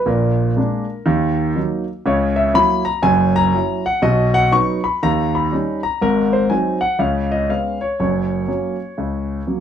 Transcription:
0.06 A#1 A#2 A#4
0.56 G#3 A#3 D4
1.06 D#2 D#3
1.56 F#3 A#3 D#4
2.06 C#2 C#3 C#5
2.36 E5
2.54 F#3 A#3 E4 B5
2.85 A#5
3.02 F#1 F#2 G#5
3.36 A#5
3.54 F#3 C#4 E4
3.86 F#5
4.02 B1 B2 D#5
4.34 F#5
4.52 F#3 B3 D#4 C#6
4.84 B5
5.03 D#2 D#3 A#5
5.35 B5
5.52 G3 C#4 D#4
5.83 A#5
6.02 G#1 G#2 A#4
6.33 C5
6.50 F#3 C4 D#4 G#5
6.81 F#5
6.99 C#2 C#3 F5
7.31 D#5
7.49 G#3 B3 C#4 F5
7.81 C#5
8.00 F#1 F#2 C#5
8.48 F#3 A#3 C#4
8.98 C#2 C#3
9.47 F#3 A#3 C#4

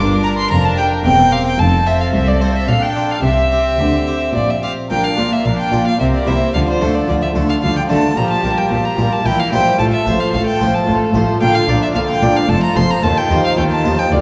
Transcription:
Already playing: G1 G2 D4 A#4 D6
0.23 D4 G4 A#4 A#5
0.37 C6
0.50 F1 F2 A#5
0.65 A5
0.77 D4 G4 A#4 G5
1.04 E1 E2 C4 G5
1.32 C4 G4 A#4 F5
1.46 G5
1.59 F1 F2 C4 A4 A5
1.86 C4 F4 A4 E5
2.00 F5
2.13 C2 A4 E5
2.27 D5
2.41 C4 F4 A4 C5
2.55 E5
2.68 A#1 A#2 D4 F5
2.82 G5
2.96 D4 F4 A#4
3.10 F5
3.24 C2 C3 C4 G4 E5
3.52 C4 G4
3.79 D2 D3
4.07 C4 G4
4.35 A#1 A#2 D5
4.50 E5
4.63 C4 G4 F5
4.91 A#1 A#2 D4 A#4 F5 G5
5.04 F5
5.18 A#1 A#2 A#3 D4 F4 A#4 D5
5.32 E5
5.45 A#1 A#2 D4 A#4 F5
5.59 G5
5.73 A#1 A#2 A#3 D4 F4 A#4 D5
5.87 F5
5.99 C2 C3 C4 G4 A#4 E5
6.14 D5
6.27 C2 C3 A#3 C4 E4 G4 A#4 C5 E5
6.54 D2 D3 F3 F4 D5 F5
6.68 C5
6.81 D2 D3 A3 D4 F4 A4
6.95 D5
7.08 D2 D3 F3 F4 D5
7.22 E5
7.35 D2 D3 A3 D4 F4 A4
7.49 F5
7.62 D2 D3 F3 F4 D5 F5
7.77 G5
7.89 D2 D3 A3 D4 F4 A4 A5
8.17 A#1 A#2 F3 F4 G4 A#5
8.30 A5
8.44 A#1 A#2 G3 F4 G4 A#4
8.58 G5
8.71 A#1 A#2 F3 F4 G4 A5
8.85 A#5
8.98 A#1 A#2 G3 F4 G4 A#4
9.12 A5
9.25 A#1 A#2 E3 E4 A#4 G5
9.39 F5
9.52 A#1 A#2 G3 E4 G4 C5 G5
9.79 A1 A2 A3 F4 A4 A5
9.92 E5
10.06 A1 A2 F3 F4 A4 C5
10.20 F5
10.33 A1 A2 A3 F4 A4 F5
10.46 G5
10.60 A1 A2 F3 F4 A4 C5
10.74 A5
10.87 A1 A2 A3 F4 A4
11.14 A1 A2 F3 F4 A4 C5
11.41 A#1 A#2 D3 F4 F5 G5
11.55 F5
11.67 A#1 A#2 F3 D4 F4 D5
11.82 E5
11.95 A#1 A#2 D3 F4 F5
12.09 G5
12.22 A#1 A#2 F3 D4 F4 D5
12.36 F5
12.49 F1 F2 A3 F4 A4 A5
12.63 A#5
12.76 F1 F2 F3 F4 A4 C5 C6
12.90 A#5
13.03 D#2 D#3 F4 A4 A5
13.17 G5
13.30 D#2 F3 D#4 F4 C5
13.45 F5
13.57 D#2 D#3 F4 A4 G5
13.71 A5
13.84 D#2 F3 D#4 F4 C5
13.99 G5
14.12 D2 D3 F4 D5

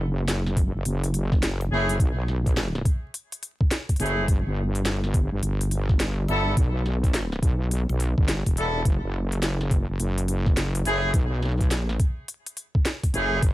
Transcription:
Already playing: F#1
0.28 snare, closed hi-hat
0.47 snare
0.57 kick, closed hi-hat
0.75 F#1
0.85 F#1, closed hi-hat
1.04 closed hi-hat
1.14 closed hi-hat
1.32 kick, snare
1.43 snare, closed hi-hat
1.61 closed hi-hat
1.71 F#1 A3 C#4 E4 G#4
1.89 closed hi-hat
2.00 B1, kick, closed hi-hat
2.28 snare
2.46 kick, closed hi-hat
2.57 snare, closed hi-hat
2.75 snare
2.85 kick, closed hi-hat
3.14 closed hi-hat
3.32 closed hi-hat
3.43 closed hi-hat
3.61 kick
3.71 snare, closed hi-hat
3.89 kick, closed hi-hat
3.96 F#1 A3 C#4 E4 G#4, closed hi-hat
4.00 closed hi-hat
4.06 closed hi-hat
4.28 G1, kick, closed hi-hat
4.46 G1
4.75 closed hi-hat
4.85 snare, closed hi-hat
5.04 snare
5.14 kick, closed hi-hat
5.32 G1
5.43 G1, closed hi-hat
5.61 closed hi-hat
5.71 closed hi-hat
5.89 kick, snare
6.00 snare, closed hi-hat
6.28 G1 B3 D4 E4 A4, closed hi-hat
6.57 B1, kick, closed hi-hat
6.86 snare
7.04 kick, closed hi-hat
7.14 snare, closed hi-hat
7.32 snare
7.43 B1, kick, closed hi-hat
7.71 closed hi-hat
7.89 B1, closed hi-hat
8.00 closed hi-hat
8.18 G1, kick
8.28 snare, closed hi-hat
8.46 E1, kick, closed hi-hat
8.57 B3 D4 E4 A4, closed hi-hat
8.85 F#1, kick, closed hi-hat
9.04 F#1
9.32 closed hi-hat
9.42 snare, closed hi-hat
9.61 snare
9.71 kick, closed hi-hat
9.89 F#1
10.00 F#1, closed hi-hat
10.18 closed hi-hat
10.28 closed hi-hat
10.46 kick, snare
10.57 snare, closed hi-hat
10.75 closed hi-hat
10.85 F#1 A3 C#4 E4 G#4, closed hi-hat
11.14 B1, kick, closed hi-hat
11.42 snare
11.45 snare
11.48 snare
11.52 snare
11.58 kick, snare, closed hi-hat
11.71 A#1, snare, closed hi-hat
11.89 snare
12.00 kick, closed hi-hat
12.28 closed hi-hat
12.46 closed hi-hat
12.57 closed hi-hat
12.75 kick
12.85 snare, closed hi-hat
13.04 kick, closed hi-hat
13.14 F#1 A3 C#4 E4 G#4, closed hi-hat
13.43 G1, kick, closed hi-hat

